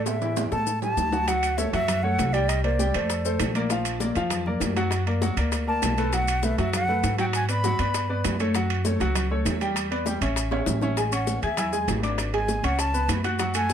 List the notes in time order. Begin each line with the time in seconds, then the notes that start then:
Already playing: A2 A3 A4
0.06 E5, high bongo, high conga, high timbale, maracas
0.22 E3 E4, high conga, high timbale, maracas
0.37 high bongo, high conga, high timbale, maracas
0.52 A2 A3 A4 A5, high bongo, high conga, maracas
0.67 low bongo, high conga, maracas
0.82 G3 G4 A5, high conga, low timbale, maracas
0.97 D2, low bongo, high conga, low timbale, maracas
1.12 F#4 F#5, low bongo, high conga, low timbale, maracas
1.28 F#3 F#4 F#5, high bongo, high conga, high timbale, maracas
1.43 high conga, high timbale, maracas
1.58 A3 A4 C#5 E5, high bongo, high conga, low timbale, maracas
1.73 F#2 F#3 F#4 E5 F#5, high bongo, high conga, high timbale, maracas
1.88 high bongo, high conga, low conga, high timbale, maracas
2.03 A3 A4 C#5 F#5, high bongo, high conga, low conga
2.18 C2, high bongo, low bongo, high conga, high timbale, low timbale, maracas
2.33 G3 G4 D5 G5, high bongo, high conga, high timbale, maracas
2.48 D#5, high bongo, high conga, high timbale, maracas
2.64 A#3 A#4 C5 D5, high conga, high timbale
2.79 G3 G4 G5, high bongo, high conga, low timbale, maracas
2.94 F2 A3 A4 C5, high bongo, high conga, high timbale, maracas
3.10 high bongo, high conga, high timbale, maracas
3.25 A3 A4 C5, high bongo, high conga, maracas
3.40 A#1, high bongo, low bongo, high conga, high timbale, low timbale, maracas
3.55 A#3 A#4 D5, high bongo, high conga, high timbale, maracas
3.70 F3 F4 F5, high bongo, high conga, high timbale, maracas
3.85 high timbale, maracas
4.00 A#3 A#4 D5, high bongo, high conga, low timbale, maracas
4.15 F2 F3 F4 F5, high bongo, high conga, high timbale, maracas
4.30 high bongo, high conga, low conga, high timbale, maracas
4.45 A#3 A#4 D5, high bongo, high conga, low conga
4.60 F#2, high bongo, low bongo, high conga, high timbale, low timbale, maracas
4.76 F#3 F#4 F#5, high bongo, high conga, high timbale, maracas
4.91 high bongo, high conga, high timbale, maracas
5.06 A#3 A#4 D5, high conga, high timbale
5.22 F#3 F#4 F#5, high bongo, high conga, low timbale, maracas
5.37 D2 A#3 A#4 D5, high bongo, high conga, high timbale, maracas
5.52 high bongo, high conga, high timbale, maracas
5.67 A#3 A#4 D5 A5, high bongo, high conga
5.82 B1, high bongo, low bongo, high conga, high timbale, low timbale, maracas
5.98 A3 A4 B4, high bongo, high conga, high timbale, maracas
6.13 F#3 F#4 F#5, high bongo, high conga, high timbale, maracas
6.28 high conga, high timbale, maracas
6.43 A3 A4 B4 E5, high bongo, high conga, low timbale, maracas
6.58 F#2 F#3 F#4 E5 F#5, high bongo, high conga, high timbale, maracas
6.73 F#5, high bongo, high conga, low conga, high timbale, maracas
6.88 A3 A4 B4, high bongo, high conga, low conga
7.03 G#2, high bongo, low bongo, high conga, high timbale, low timbale, maracas
7.18 F#3 F#4 F#5 G5, high bongo, high conga, high timbale, maracas
7.33 G#5, high bongo, high conga, high timbale, maracas
7.49 B3 B4 D5 B5, high conga, high timbale, maracas
7.64 F#3 F#4 F#5, high bongo, high conga, low timbale, maracas
7.79 G2 B3 B4 D5, high bongo, high conga, high timbale, maracas
7.94 high bongo, high conga, high timbale, maracas
8.09 B3 B4 D5, high bongo, high conga
8.24 F#2, high bongo, low bongo, high conga, high timbale, low timbale, maracas
8.40 A3 A4 C#5, high bongo, high conga, high timbale, maracas
8.55 F#3 F#4 F#5, high bongo, high conga, high timbale, maracas
8.70 high conga, high timbale
8.85 A3 A4 C#5, high bongo, high conga, low timbale, maracas
9.00 C#2 F#3 F#4 F#5, high bongo, high conga, high timbale, maracas
9.15 high bongo, high conga, low conga, high timbale, maracas
9.30 A3 A4 C#5, high bongo, high conga
9.45 E2, high bongo, low bongo, high conga, high timbale, low timbale, maracas
9.60 G3 G4 G5, high bongo, high conga, high timbale, maracas
9.76 high bongo, high conga, high timbale, maracas
9.91 B3 B4 D5, high timbale
10.06 G3 G4 G5, high bongo, high conga, low timbale, maracas
10.21 A1 C#4 C#5 E5, high bongo, high conga, high timbale, maracas
10.36 high bongo, high timbale, maracas
10.51 C#4 C#5 E5, high bongo, high conga, high timbale
10.66 A1, low bongo, high conga, low timbale, maracas
10.81 C#4 C#5 E5, low bongo, high conga, low timbale, maracas
10.97 G#3 G#4 G#5, high bongo, high conga, high timbale, maracas
11.12 C#4 C#5 F#5 C#6, high conga, high timbale, maracas
11.27 high bongo, high conga, low timbale, maracas
11.42 E2 G#4 E5 G#5 G#6, high bongo, high conga, high timbale, maracas
11.57 E4 E5 G#5 E6, high bongo, high conga, low conga, high timbale, maracas
11.72 G#3 G#4 G#5, high bongo, high conga, maracas
11.88 G#1, high bongo, low bongo, high conga, high timbale, low timbale, maracas
12.03 D4 D5 D6, high bongo, high conga, high timbale, maracas
12.18 high bongo, high conga, high timbale, maracas
12.33 G#3 G#4 G#5, high conga, high timbale
12.48 high bongo, high conga, low timbale, maracas
12.63 C#2 C#4 C#5 F#5 C#6, high bongo, high conga, high timbale, maracas
12.79 A5, high bongo, high conga, high timbale, maracas
12.94 B3 B4 B5, high bongo, high conga, maracas
13.08 F#2, high bongo, low bongo, high conga, high timbale, low timbale, maracas
13.24 F#4 F#5 F#6, high bongo, high conga, high timbale, maracas
13.39 F#3 F#4 F#5, high bongo, high conga, high timbale, maracas
13.54 A3 A4 F#5 G#5, high conga, high timbale, maracas
13.70 high bongo, high conga, low timbale, maracas